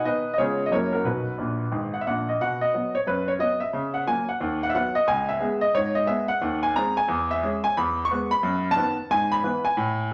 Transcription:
0.04 D#3 B3 D#4 B4 D#5
0.34 D#5
0.38 C#3 G#3 B3 F4 G#4 C#5
0.66 D#5
0.71 F#2 F#3 A#3 E4 A#4 C#5
0.93 F#4 A#4
1.04 B1 B2 F#4 B4
1.38 A#1 A#2
1.71 G#1 G#2
1.94 F#5
2.01 E5
2.06 A#1 A#2 F#5
2.29 D#5
2.41 B2 F#5
2.61 D#5
2.74 F#3 B3 F#4
2.95 C#5
3.07 F#2 B4
3.28 C#5
3.39 F#3 B3 F#4 D#5
3.60 E5
3.73 C#3
3.94 F#5
4.07 F#3 A#3 F#4 G#5
4.29 F#5
4.41 D#2
4.63 F#5
4.70 E5
4.75 F#3 B3 B4 F#5
4.95 D#5
5.07 C#2 G#5
5.29 E5
5.40 G#3 B3 G#4
5.61 D#5
5.74 G#2 C#5
5.95 D#5
6.06 G#3 B3 G#4 E5
6.28 F#5
6.42 D#2
6.63 G#5
6.76 G#3 C4 G#4 A#5
6.97 G#5
7.08 E2
7.31 E5
7.43 G#3 C#4 G#4
7.64 G#5
7.77 E2 B5
8.05 C#6
8.11 G#3 B3 B4
8.31 B5
8.43 F#2
8.71 A5
8.76 D#3 B3 B4
9.10 G#2 G#5
9.32 B5
9.43 E3 B3 B4
9.65 G#5
9.77 A2

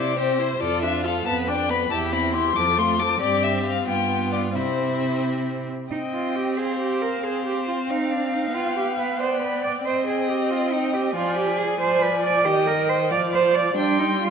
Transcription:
Already playing: C3 E4 C5 D5
0.18 C4 G4 C5
0.39 E4 C5
0.60 F2 F4 A4 D5
0.82 D4 F4 E5
1.04 F4 A4 F5
1.26 F2 B3 B4 A5
1.48 D4 D5 G5
1.69 B3 B4 B5
1.91 E2 E4 G4 A5
2.12 C4 E4 B5
2.34 E4 G4 C6
2.55 F2 F3 A4 D6
2.78 A3 F4 C6
2.99 F3 A4 D6
3.21 G2 C4 G4 D5
3.43 E5
3.65 F5
3.87 G2 B3 F4 G5
4.33 D5
4.55 C3 C4 E4 C5
5.91 C4 D#4 D#5 G5
6.13 F4
6.35 G4
6.58 G#4 C5 F5
6.79 G4
7.02 A#4
7.24 C4 G#4 C5
7.46 G4
7.68 F4
7.90 D#4 F5
8.11 D4
8.33 D#4
8.54 B3 F4 G5
8.76 G4
8.98 B4
9.20 C5 D5 G5
9.42 B4
9.63 D5
9.85 C4 C5 D#5 G5
10.07 G#4
10.29 G4
10.51 F4
10.72 D#4
10.94 G4
11.16 F3 F4 D5 G#5
11.38 G4
11.59 G#4
11.80 F3 C5 D5
12.02 B4
12.24 D5
12.45 D#3 G4 D#5 G5
12.67 A#4
12.89 C5
13.11 F3 D5 F5
13.33 C5
13.55 D5
13.77 G3 D4 G5 C6
13.99 D#4
14.22 F4

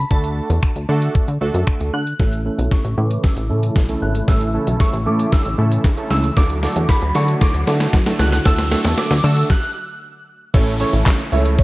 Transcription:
0.10 D2 A3 D4 F#4 A4 A5, kick
0.24 closed hi-hat
0.50 E2, closed hi-hat
0.63 finger snap, kick
0.76 D2, closed hi-hat
0.89 D3 A3 D4 F#4 A4
1.02 closed hi-hat
1.15 kick
1.28 D3, closed hi-hat
1.41 D2 A3 D4 F#4 A4
1.54 F#2, closed hi-hat
1.67 finger snap, kick
1.80 D2, closed hi-hat
1.93 D3 F#6
2.06 closed hi-hat
2.19 A1 C#3 E3 A3 C#4 E4 A4 E6, kick, snare, riser
2.32 closed hi-hat
2.45 A3 C#4 E4 A4
2.58 B1, closed hi-hat
2.71 C#6, kick, snare
2.85 A1, closed hi-hat
2.97 A2 A3 C#4 E4 B4 D6
3.11 closed hi-hat
3.24 E6, kick, snare
3.37 A1, closed hi-hat
3.49 A2 A3 C#4 E4 A4
3.63 closed hi-hat
3.76 B1, kick, snare
3.89 A3 C#4 E4 A4, closed hi-hat
4.02 G#1 F#6
4.15 closed hi-hat
4.28 A1 A3 C#4 E4 A4 E6, kick, snare
4.41 closed hi-hat
4.54 A3 C#4 E4 A4
4.67 B1, closed hi-hat
4.80 C#6, kick, snare
4.93 A1, closed hi-hat
5.06 A2 A3 C#4 E4 A4 D6
5.19 closed hi-hat
5.32 E6, kick, snare
5.45 A1, closed hi-hat
5.58 A2 A3 C#4 E4 A4
5.72 closed hi-hat
5.84 kick, snare
5.97 A3 C#4 E4 A4, closed hi-hat
6.11 C#2 E6, snare
6.24 closed hi-hat
6.36 D2 D3 F#3 A3 D4 F#4 A4 D6, kick, snare
6.50 closed hi-hat
6.63 A3 D4 F#4 A4, snare, open hi-hat
6.76 E2, closed hi-hat
6.89 B5, kick, snare
7.02 D2, closed hi-hat
7.15 D3 A3 D4 F#4 A4 C#6, snare, open hi-hat
7.28 closed hi-hat
7.41 D6, kick, snare
7.54 D2, closed hi-hat
7.67 D3 A3 D4 F#4 A4, snare, open hi-hat
7.80 snare, closed hi-hat
7.93 F#2, kick, snare
8.06 A3 D4 F#4 A4, snare, closed hi-hat
8.19 C#2 F#6, snare, open hi-hat
8.32 snare, closed hi-hat
8.45 D2 A3 D4 F#4 A4 E6, kick, snare, shaker
8.58 snare, closed hi-hat, shaker
8.71 A3 D4 F#4 A4, snare, open hi-hat, shaker
8.84 E2, snare, closed hi-hat, shaker
8.98 D6, snare, shaker
9.11 D2, snare, closed hi-hat, shaker
9.23 D3 A3 D4 F#4 A4 E6, open hi-hat, shaker
9.37 closed hi-hat, shaker
9.50 F#6, kick, snare
10.54 A1 C#3 E3 A3 C#4 E4 A4 C#5, kick, crash, downlifter, shaker
10.67 closed hi-hat, shaker
10.80 A3 C#4 E4 A4 C#5, open hi-hat, shaker
10.93 A1, closed hi-hat, shaker
11.06 kick, snare, clap, shaker
11.20 closed hi-hat, shaker
11.32 C#2 A3 C#4 E4 A4 C#5 E5, open hi-hat, shaker
11.46 closed hi-hat, shaker
11.59 C#5, kick, shaker

